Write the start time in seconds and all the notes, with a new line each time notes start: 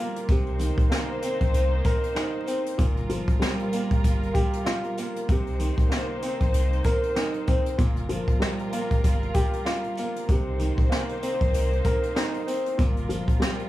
Already playing: F3 G3 F4 G4 A#4
0.00 A#3
0.16 closed hi-hat
0.29 C2 C3 A#3 D#4 C5, kick, closed hi-hat, sleigh bells
0.47 closed hi-hat
0.59 D#3, closed hi-hat, sleigh bells
0.78 C2, kick, closed hi-hat
0.90 A#3, snare, sleigh bells
1.22 C4, closed hi-hat, sleigh bells
1.41 A#1, kick, closed hi-hat
1.54 C2, closed hi-hat, sleigh bells
1.84 A#4, kick, snare, closed hi-hat, sleigh bells
2.03 closed hi-hat
2.15 D#4, snare, sleigh bells
2.47 C4, closed hi-hat, sleigh bells
2.66 closed hi-hat
2.78 G1 A#2 G3 F4 A#4, kick, closed hi-hat, sleigh bells
2.97 closed hi-hat
3.09 F3, closed hi-hat, sleigh bells
3.28 G1, kick, closed hi-hat
3.40 G3, snare, sleigh bells
3.59 closed hi-hat
3.72 A#3, closed hi-hat, sleigh bells
3.91 F1, kick, closed hi-hat
4.04 G1, kick, closed hi-hat, sleigh bells
4.23 closed hi-hat
4.34 G4, kick, closed hi-hat, sleigh bells
4.53 closed hi-hat
4.65 F4, snare, sleigh bells
4.84 closed hi-hat
4.98 A#3, closed hi-hat, sleigh bells
5.16 closed hi-hat
5.29 C2 C3 A#3 D#4 C5, kick, closed hi-hat, sleigh bells
5.47 closed hi-hat
5.59 D#3, closed hi-hat, sleigh bells
5.78 C2, kick, closed hi-hat
5.90 A#3, snare, sleigh bells
6.22 C4, closed hi-hat, sleigh bells
6.40 A#1, kick, closed hi-hat
6.54 C2, closed hi-hat, sleigh bells
6.73 closed hi-hat
6.84 A#4, kick, snare, closed hi-hat, sleigh bells
7.03 closed hi-hat
7.15 D#4, snare, sleigh bells
7.34 closed hi-hat
7.47 C4, kick, closed hi-hat, sleigh bells
7.66 closed hi-hat
7.78 G1 A#2 G3 F4 A#4, kick, closed hi-hat, sleigh bells
7.97 closed hi-hat
8.09 F3, closed hi-hat, sleigh bells
8.28 G1, kick, closed hi-hat
8.40 G3, snare, sleigh bells
8.59 closed hi-hat
8.72 A#3, closed hi-hat, sleigh bells
8.91 F1, kick, closed hi-hat
9.04 G1, kick, closed hi-hat, sleigh bells
9.23 closed hi-hat
9.34 G4, kick, closed hi-hat, sleigh bells
9.53 closed hi-hat
9.65 F4, snare, sleigh bells
9.84 closed hi-hat
9.97 A#3, closed hi-hat, sleigh bells
10.16 closed hi-hat
10.29 C2 C3 A#3 D#4 C5, kick, closed hi-hat, sleigh bells
10.59 D#3, closed hi-hat, sleigh bells
10.78 C2, kick, closed hi-hat
10.90 A#3, snare, sleigh bells
11.09 closed hi-hat
11.23 C4, closed hi-hat, sleigh bells
11.41 A#1, kick, closed hi-hat
11.54 C2, closed hi-hat, sleigh bells
11.73 closed hi-hat
11.84 A#4, kick, snare, closed hi-hat, sleigh bells
12.03 closed hi-hat
12.15 D#4, snare, sleigh bells
12.34 closed hi-hat
12.47 C4, closed hi-hat, sleigh bells
12.66 closed hi-hat
12.78 G1 A#2 G3 F4 A#4, kick, closed hi-hat, sleigh bells
12.97 closed hi-hat
13.09 F3, closed hi-hat, sleigh bells
13.28 G1, kick, closed hi-hat
13.40 G3, snare, sleigh bells
13.59 closed hi-hat